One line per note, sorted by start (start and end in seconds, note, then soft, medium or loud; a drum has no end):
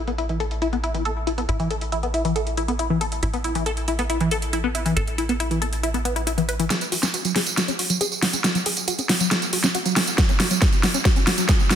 0.00 1.47 A1 medium
0.07 0.11 B3 medium
0.07 closed hi-hat soft
0.18 0.26 E4 medium
0.18 closed hi-hat medium
0.29 0.37 E3 medium
0.29 closed hi-hat soft
0.40 0.45 A4 medium
0.40 closed hi-hat medium
0.51 closed hi-hat soft
0.62 0.67 E4 medium
0.62 closed hi-hat medium
0.73 0.76 B3 medium
0.73 closed hi-hat soft
0.84 0.92 E4 medium
0.84 closed hi-hat medium
0.94 1.02 E3 medium
0.94 closed hi-hat soft
1.05 1.11 A4 medium
1.05 closed hi-hat medium
1.27 1.32 E4 medium
1.27 closed hi-hat medium
1.38 1.41 B3 medium
1.38 closed hi-hat soft
1.49 3.21 A1 medium
1.49 1.57 E4 medium
1.49 closed hi-hat medium
1.60 1.68 E3 medium
1.60 closed hi-hat soft
1.70 1.76 A4 medium
1.70 closed hi-hat medium
1.81 closed hi-hat soft
1.92 1.98 E4 medium
1.92 closed hi-hat medium
2.03 2.06 B3 medium
2.03 closed hi-hat soft
2.14 2.22 E4 medium
2.14 closed hi-hat medium
2.25 2.33 E3 medium
2.25 closed hi-hat soft
2.36 2.41 A4 medium
2.36 closed hi-hat medium
2.47 closed hi-hat soft
2.57 2.63 E4 medium
2.57 closed hi-hat medium
2.68 2.72 B3 medium
2.68 closed hi-hat soft
2.79 2.87 E4 medium
2.79 closed hi-hat medium
2.90 2.98 E3 medium
3.01 3.06 A4 medium
3.01 closed hi-hat medium
3.12 closed hi-hat soft
3.23 4.94 A1 medium
3.23 3.28 E4 medium
3.23 closed hi-hat medium
3.34 3.37 B3 medium
3.34 closed hi-hat soft
3.44 3.53 E4 medium
3.44 closed hi-hat medium
3.55 3.63 E3 medium
3.55 closed hi-hat medium
3.66 3.72 A4 medium
3.66 closed hi-hat medium
3.77 closed hi-hat soft
3.88 3.93 E4 medium
3.88 closed hi-hat medium
3.99 4.02 B3 medium
3.99 closed hi-hat medium
4.10 4.18 E4 medium
4.10 closed hi-hat medium
4.21 4.29 E3 medium
4.21 closed hi-hat soft
4.31 4.37 A4 medium
4.31 closed hi-hat medium
4.42 closed hi-hat medium
4.53 4.58 E4 medium
4.53 closed hi-hat medium
4.64 4.67 B3 medium
4.75 4.83 E4 medium
4.75 closed hi-hat medium
4.86 4.94 E3 medium
4.86 closed hi-hat soft
4.96 6.68 A1 medium
4.96 5.02 A4 medium
4.96 closed hi-hat medium
5.07 closed hi-hat soft
5.18 5.24 E4 medium
5.18 closed hi-hat medium
5.29 5.32 B3 medium
5.29 closed hi-hat medium
5.40 5.48 E4 medium
5.40 closed hi-hat medium
5.51 5.59 E3 medium
5.51 closed hi-hat soft
5.62 5.67 A4 medium
5.62 closed hi-hat medium
5.73 closed hi-hat soft
5.83 5.89 E4 medium
5.83 closed hi-hat medium
5.94 5.98 B3 medium
5.94 closed hi-hat soft
6.05 6.13 B3 medium
6.05 closed hi-hat medium
6.16 6.21 E4 medium
6.16 closed hi-hat soft
6.27 6.32 E4 medium
6.27 closed hi-hat medium
6.38 6.41 E3 medium
6.38 closed hi-hat soft
6.49 6.54 B4 medium
6.49 closed hi-hat medium
6.59 6.65 E3 medium
6.59 closed hi-hat soft
6.70 6.76 G#4 medium
6.70 snare soft
6.70 closed hi-hat medium
6.70 tambourine medium
6.81 closed hi-hat soft
6.81 tambourine soft
6.92 6.98 F#4 medium
6.92 open hi-hat loud
7.03 7.06 C#4 medium
7.03 snare soft
7.03 closed hi-hat medium
7.03 tambourine medium
7.14 7.22 F#4 medium
7.14 closed hi-hat medium
7.14 tambourine soft
7.25 7.33 F#3 medium
7.25 closed hi-hat soft
7.25 tambourine soft
7.36 7.41 G#4 medium
7.36 snare soft
7.36 open hi-hat medium
7.46 closed hi-hat medium
7.46 tambourine medium
7.57 7.63 F#4 medium
7.57 snare medium
7.57 closed hi-hat medium
7.57 tambourine soft
7.68 7.71 C#4 medium
7.68 closed hi-hat soft
7.68 tambourine soft
7.79 7.87 F#4 medium
7.79 open hi-hat loud
7.90 7.98 F#3 medium
7.90 closed hi-hat medium
7.90 tambourine medium
8.01 8.06 G#4 medium
8.01 closed hi-hat medium
8.01 tambourine soft
8.12 tambourine soft
8.23 8.28 F#4 medium
8.23 snare medium
8.23 open hi-hat medium
8.33 8.37 C#4 medium
8.33 closed hi-hat medium
8.33 tambourine medium
8.44 8.52 F#4 medium
8.44 snare medium
8.44 closed hi-hat medium
8.44 tambourine soft
8.55 8.63 F#3 medium
8.55 closed hi-hat soft
8.55 tambourine soft
8.66 8.71 G#4 medium
8.66 open hi-hat loud
8.77 closed hi-hat medium
8.77 tambourine medium
8.88 8.93 F#4 medium
8.88 closed hi-hat medium
8.88 tambourine medium
8.99 9.02 C#4 medium
8.99 closed hi-hat soft
8.99 tambourine soft
9.09 9.18 F#4 medium
9.09 snare medium
9.09 open hi-hat medium
9.20 9.29 F#3 medium
9.20 closed hi-hat medium
9.20 tambourine medium
9.31 9.37 G#4 medium
9.31 snare medium
9.31 closed hi-hat medium
9.31 tambourine soft
9.42 closed hi-hat soft
9.42 tambourine soft
9.53 9.58 F#4 medium
9.53 open hi-hat loud
9.64 9.67 C#4 medium
9.64 snare medium
9.64 closed hi-hat medium
9.64 tambourine medium
9.75 9.83 F#4 medium
9.75 closed hi-hat medium
9.75 tambourine soft
9.86 9.94 F#3 medium
9.86 closed hi-hat soft
9.86 tambourine soft
9.96 10.02 G#4 medium
9.96 snare medium
9.96 open hi-hat loud
10.07 closed hi-hat medium
10.07 tambourine medium
10.18 10.24 F#4 medium
10.18 kick loud
10.18 snare medium
10.18 closed hi-hat medium
10.18 tambourine medium
10.29 10.32 C#4 medium
10.29 closed hi-hat soft
10.29 tambourine soft
10.40 10.48 F#4 medium
10.40 snare medium
10.40 open hi-hat loud
10.51 10.59 F#3 medium
10.51 closed hi-hat medium
10.51 tambourine medium
10.62 10.67 G#4 medium
10.62 kick loud
10.62 snare medium
10.62 closed hi-hat medium
10.62 tambourine soft
10.73 closed hi-hat soft
10.73 tambourine soft
10.83 10.89 F#4 medium
10.83 snare medium
10.83 open hi-hat medium
10.94 10.98 C#4 medium
10.94 closed hi-hat medium
10.94 tambourine medium
11.05 11.11 F#4 medium
11.05 kick loud
11.05 snare medium
11.05 closed hi-hat medium
11.16 11.19 C#4 medium
11.16 closed hi-hat soft
11.16 tambourine soft
11.27 11.35 F#4 medium
11.27 snare medium
11.27 open hi-hat loud
11.38 11.46 F#3 medium
11.38 closed hi-hat medium
11.38 tambourine medium
11.49 11.54 G#4 medium
11.49 kick loud
11.49 snare medium
11.49 closed hi-hat medium
11.49 tambourine soft
11.60 tambourine soft
11.71 11.75 F#4 medium
11.71 snare medium
11.71 open hi-hat loud